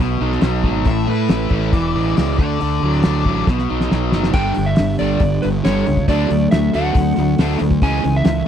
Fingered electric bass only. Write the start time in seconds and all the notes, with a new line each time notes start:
0.00 B1
0.21 B1
0.42 B1
0.63 G#1
0.86 A1
1.08 A2
1.30 A1
1.51 A1
1.73 E1
1.96 A1
2.18 C#2
2.38 D2
2.62 D2
2.83 D2
3.06 D2
3.26 A1
3.47 B1
3.71 B1
3.92 B1
4.13 F#1
4.34 G1
4.57 G1
4.79 G1
5.00 G1
5.21 G1
5.45 G1
5.66 G1
5.88 C#2
6.08 D2
6.31 D2
6.52 D2
6.75 D2
6.95 D2
7.17 D2
7.39 D2
7.61 D2
7.82 C#2
8.05 C#2
8.26 C#2